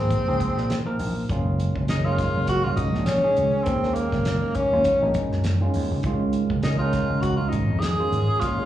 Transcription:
Already playing: tine electric piano F3 A#3, tenor saxophone C4
0.00 tine electric piano D#4 G#4
0.11 kick, closed hi-hat
0.27 slap bass C#2, tine electric piano F3 A#3 D#4 G#4
0.40 kick, closed hi-hat
0.57 slap bass A#2, snare
0.70 snare, closed hi-hat
0.85 tine electric piano F3 A#3 D#4 A#4
0.99 slap bass A#1, open hi-hat
1.17 muted slap bass stroke
1.29 slap bass F#1, tine electric piano D#3 G#3 C#4 F4, kick, closed hi-hat
1.60 closed hi-hat
1.76 slap bass F#1, kick
1.88 tine electric piano D#3 G#3 C#4 G#4, tenor saxophone D#4, snare, closed hi-hat
2.05 tine electric piano D#3 G#3 C#4 F4, tenor saxophone F4
2.18 kick, snare, closed hi-hat
2.35 slap bass F#1
2.47 tenor saxophone F#4, kick, closed hi-hat
2.63 slap bass F#1, tenor saxophone F4
2.76 slap bass C#2, tenor saxophone D#4, kick, closed hi-hat
2.94 slap bass A#1, snare
3.06 tenor saxophone C#4, snare, closed hi-hat
3.23 tine electric piano D#3 G#3 C#4 G#4
3.37 slap bass C#2, closed hi-hat
3.64 slap bass D#2, tine electric piano D#3 G#3 C#4 G#4, tenor saxophone C4, kick, closed hi-hat
3.83 tine electric piano D#3 G#3 C#4 D#4, snare
3.94 tenor saxophone A#3, closed hi-hat
4.12 slap bass F#1, kick, snare
4.25 snare, closed hi-hat
4.55 tenor saxophone C#4, kick, closed hi-hat
4.72 slap bass D#2, tine electric piano D#3 G#3 C#4 F4
4.84 kick, closed hi-hat
5.01 slap bass A#1, tine electric piano D#3 G#3 C#4 D#4
5.14 kick, closed hi-hat
5.32 slap bass F#2, snare
5.44 snare, closed hi-hat
5.60 tine electric piano D#3 G#3 C#4 F4
5.74 slap bass D#2, open hi-hat
5.91 slap bass C#2
6.03 slap bass C#2, tine electric piano D#3 G#3 C#4 F4, kick, closed hi-hat
6.33 closed hi-hat
6.50 slap bass C#2, kick
6.63 tine electric piano D#3 G#3 C#4 D#4, tenor saxophone D#4, snare, closed hi-hat
6.79 tine electric piano D#3 G#3 C#4 D#4, tenor saxophone F4
6.93 kick, snare, closed hi-hat
7.10 slap bass C#2
7.22 tenor saxophone F#4, kick, closed hi-hat
7.37 slap bass C#2, tenor saxophone F4
7.49 slap bass G#1, tenor saxophone D#4, kick, closed hi-hat
7.70 slap bass F2
7.80 tenor saxophone G#4, snare, closed hi-hat
7.98 tine electric piano D#3 G#3 C#4 F4
8.12 slap bass G#1, closed hi-hat
8.40 slap bass A#2, tine electric piano D#3 G#3, tenor saxophone F4, kick, closed hi-hat
8.44 tine electric piano C#4 F4
8.57 tine electric piano D#3 G#3 C#4 G#4

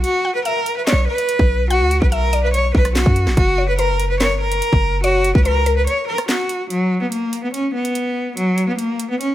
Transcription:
0.04 cello F#4, closed hi-hat
0.25 synth pluck F#5
0.35 cello B4
0.45 cello A#4, synth pluck E5, closed hi-hat
0.66 closed hi-hat
0.77 cello B4
0.87 cello C#5, synth pluck D5, snare, clap, closed hi-hat
0.92 808-style bass B1
1.08 cello B4
1.18 closed hi-hat
1.29 closed hi-hat
1.39 808-style bass B1, kick
1.70 cello F#4, synth pluck F#5, closed hi-hat
1.81 808-style bass D2
1.91 closed hi-hat
2.02 808-style bass B1, cello B4, kick
2.12 cello A#4, synth pluck E5, closed hi-hat
2.33 synth pluck D5, closed hi-hat
2.43 cello B4
2.54 cello C#5, closed hi-hat
2.75 808-style bass B1, cello B4, kick
2.85 cross-stick, closed hi-hat
2.96 cello F#4, snare, clap
3.06 808-style bass F#2, kick
3.16 closed hi-hat
3.27 808-style bass A#1, snare
3.37 808-style bass F#1, cello F#4, kick, closed hi-hat
3.58 synth pluck C#5
3.68 cello B4
3.79 cello A#4, synth pluck B4, closed hi-hat
4.00 closed hi-hat
4.10 cello B4
4.20 synth pluck A#4, cello C#5, snare, clap, closed hi-hat
4.31 808-style bass G1
4.41 cello A#4
4.46 808-style bass F#1
4.52 closed hi-hat
4.62 closed hi-hat
4.73 808-style bass F#1, kick
5.04 cello F#4, synth pluck C#5, closed hi-hat
5.24 closed hi-hat
5.35 808-style bass C#2, cello B4, kick
5.45 cello A#4, synth pluck B4, closed hi-hat
5.66 synth pluck A#4, closed hi-hat
5.77 cello B4
5.87 cello C#5, closed hi-hat
6.08 cello A#4
6.18 cross-stick, closed hi-hat
6.29 cello F#4, snare, clap
6.49 closed hi-hat
6.70 cello F#3, closed hi-hat
7.02 cello B3
7.12 cello A#3, closed hi-hat
7.33 closed hi-hat
7.43 cello B3
7.54 cello C#4, closed hi-hat
7.75 cello B3
7.85 closed hi-hat
7.95 closed hi-hat
8.37 cello F#3, closed hi-hat
8.58 closed hi-hat
8.68 cello B3
8.79 cello A#3, closed hi-hat
9.00 closed hi-hat
9.10 cello B3
9.20 cello C#4, closed hi-hat

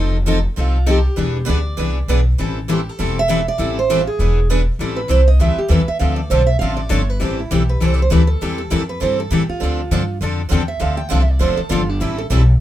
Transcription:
Already playing: upright bass F1, steel-string acoustic guitar F3 C4 D#4 A4
0.26 steel-string acoustic guitar F3 C4 D#4 A4
0.56 upright bass C2, steel-string acoustic guitar F3 C4 D#4 F4 A4
0.87 steel-string acoustic guitar F3 C4 D#4 G4 A4
1.16 upright bass E1, steel-string acoustic guitar E3 B3 D4 G#4 B4
1.45 upright bass D2, steel-string acoustic guitar E3 B3 D4 G#4 B4
1.50 steel-string acoustic guitar D5
1.77 upright bass C2, steel-string acoustic guitar E3 B3 D4 G#4 B4
2.08 upright bass B1, steel-string acoustic guitar E3 B3 D4 G#4 B4
2.38 upright bass A1, steel-string acoustic guitar E3 G3 C4 E4 A4
2.68 steel-string acoustic guitar E3 G3 C4 E4 A4
2.72 steel-string acoustic guitar G4
2.89 steel-string acoustic guitar A4
2.99 upright bass E1, steel-string acoustic guitar E3 G3 C4 E4 A4
3.19 steel-string acoustic guitar E5
3.28 steel-string acoustic guitar E3 G3 C4 E4 A4
3.48 steel-string acoustic guitar D5
3.59 upright bass A1, steel-string acoustic guitar E3 G3 C4 E4 A4
3.79 steel-string acoustic guitar C5
3.90 steel-string acoustic guitar E3 G3 C4 E4 A4
4.01 steel-string acoustic guitar F4
4.07 steel-string acoustic guitar G#4
4.19 upright bass E1, steel-string acoustic guitar E3 B3 D4 G#4 B4
4.50 steel-string acoustic guitar E3 B3 D4 G#4 B4
4.79 upright bass A1, steel-string acoustic guitar E3 G3 C4 E4 A4
4.96 steel-string acoustic guitar B4
5.09 upright bass C2, steel-string acoustic guitar E3 G3 C4 E4 A4 C5
5.28 steel-string acoustic guitar D#5
5.39 upright bass D2, steel-string acoustic guitar E3 G3 C4 E4 A4 E5
5.56 steel-string acoustic guitar G4, muted upright bass stroke
5.68 upright bass E2, steel-string acoustic guitar E3 G3 C4 E4 A4 B4
5.87 steel-string acoustic guitar E5, muted upright bass stroke
5.99 upright bass D2, steel-string acoustic guitar D3 F3 C4 D4 A4 F5
6.16 steel-string acoustic guitar D5
6.30 upright bass B1, steel-string acoustic guitar D3 F3 C4 D4 A4 C5
6.47 steel-string acoustic guitar E5
6.59 upright bass A1, steel-string acoustic guitar D3 F3 C4 D4 A4 F5
6.77 steel-string acoustic guitar D5
6.90 upright bass G1, steel-string acoustic guitar D3 F3 C4 D4 A4 C#5
7.10 steel-string acoustic guitar B4
7.21 upright bass A1, steel-string acoustic guitar E3 G3 C4 E4 A4 C5
7.40 steel-string acoustic guitar E4
7.51 upright bass B1, steel-string acoustic guitar E3 G3 C4 E4 G4 A4
7.69 steel-string acoustic guitar B4
7.81 upright bass C2, steel-string acoustic guitar E3 G3 C4 E4 A4 C5
7.94 steel-string acoustic guitar D5
8.02 steel-string acoustic guitar C5
8.10 upright bass D2, steel-string acoustic guitar E3 G3 C4 E4 A4 B4
8.27 steel-string acoustic guitar A4
8.41 upright bass E2, steel-string acoustic guitar E3 G3 C4 E4 G4 A4
8.58 steel-string acoustic guitar A4
8.70 upright bass F2, steel-string acoustic guitar E3 G3 C4 E4 A4 A#4
8.89 steel-string acoustic guitar B4
9.00 upright bass G2, steel-string acoustic guitar E3 G3 C4 E4 A4 C5
9.20 steel-string acoustic guitar A4
9.30 upright bass A2, steel-string acoustic guitar E3 G3 C4 E4 G4 A4
9.49 steel-string acoustic guitar F4, muted upright bass stroke
9.60 upright bass D2, steel-string acoustic guitar D3 F3 C4 D4 A4
9.91 upright bass G2, steel-string acoustic guitar D3 F3 C4 D4 A4
10.21 upright bass F2, steel-string acoustic guitar D3 F3 C4 D4 A4
10.49 upright bass E2, steel-string acoustic guitar D3 F3 C4 D4 A4 G5
10.68 steel-string acoustic guitar E5
10.79 upright bass D2, steel-string acoustic guitar D3 F3 C4 D4 A4 F5
10.97 steel-string acoustic guitar G5
11.09 upright bass C2, steel-string acoustic guitar D3 F3 C4 D4 A4 F5
11.22 steel-string acoustic guitar E5
11.31 steel-string acoustic guitar D5
11.39 upright bass F1, steel-string acoustic guitar D3 F3 C4 D4 A4 C5
11.57 steel-string acoustic guitar A4, muted upright bass stroke
11.69 upright bass G1, steel-string acoustic guitar D3 F3 C4 D4 F4 A4
11.89 steel-string acoustic guitar D4
12.00 upright bass A1, steel-string acoustic guitar E3 G3 C4 E4 A4
12.18 steel-string acoustic guitar A4
12.30 upright bass B1, steel-string acoustic guitar E3 G3 C4 E4 A4

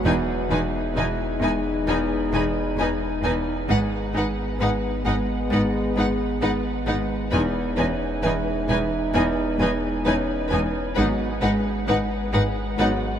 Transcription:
Already playing: harp G#3, celesta C#5
0.05 double bass section E1, sub bass E1, cello section E2, harp E2, french horn section G#3 D#4, viola section D#4, violin section B4 G#5
0.50 double bass section E1, cello section E2, harp E3, viola section D#4, violin section B4 G#5
0.96 double bass section E1, cello section E2, harp E3, viola section D#4, violin section B4 G#5
1.41 double bass section E1, cello section E2, harp E3, viola section D#4, violin section B4 G#5
1.87 double bass section E1, cello section E2, harp E2, viola section D#4, violin section B4 G#5
2.32 double bass section E1, cello section E2, harp E2, viola section D#4, violin section B4 G#5
2.77 double bass section E1, cello section E2, harp E2, viola section D#4, violin section B4 G#5
3.23 double bass section E1, cello section E2, harp E2, viola section D#4, violin section B4 G#5
3.68 double bass section G#1, sub bass G#1, harp G#2, cello section G#2, french horn section G#3 B3, viola section D#4, violin section B4 F#5
4.14 double bass section G#1, cello section G#2, harp G#3, viola section D#4, violin section B4 F#5
4.59 double bass section G#1, cello section G#2, harp G#3, viola section D#4, celesta B4, violin section B4 F#5
5.05 double bass section G#1, cello section G#2, harp G#3, viola section D#4, violin section B4 F#5
5.50 double bass section G#1, harp G#2, cello section G#2, viola section D#4, violin section B4 F#5
5.96 double bass section G#1, harp G#2, cello section G#2, viola section D#4, violin section B4 F#5
6.41 double bass section G#1, harp G#2, cello section G#2, viola section D#4, violin section B4 F#5
6.86 double bass section G#1, harp G#2, cello section G#2, viola section D#4, violin section B4 F#5
7.31 sub bass E1, double bass section E1, harp E2, cello section E2, french horn section G#3 D#4, viola section D#4, violin section B4 G#5
7.76 double bass section E1, cello section E2, harp E3, celesta C#4 C#5, viola section D#4, violin section B4 G#5
8.23 double bass section E1, cello section E2, harp E3, viola section D#4, violin section B4 G#5
8.68 double bass section E1, cello section E2, harp E3, viola section D#4, violin section B4 G#5
9.13 double bass section E1, harp E2, cello section E2, viola section D#4, violin section B4 G#5
9.59 double bass section E1, harp E2, cello section E2, viola section D#4, violin section B4 G#5
10.05 double bass section E1, harp E2, cello section E2, celesta C#4 C#5, viola section D#4, violin section B4 G#5
10.49 double bass section E1, harp E2, cello section E2, viola section D#4, violin section B4 G#5
10.95 sub bass G#1, double bass section G#1, harp G#2, cello section G#2, french horn section F#3 B3, viola section D#4, violin section B4 F#5
11.41 double bass section G#1, cello section G#2, harp G#3, viola section D#4, violin section B4 F#5
11.87 double bass section G#1, cello section G#2, harp G#3, viola section D#4, violin section B4 F#5
12.33 double bass section G#1, cello section G#2, harp G#3, viola section D#4, violin section B4 F#5
12.78 double bass section G#1, harp G#2, cello section G#2, french horn section F#3 B3, viola section D#4, violin section B4 F#5

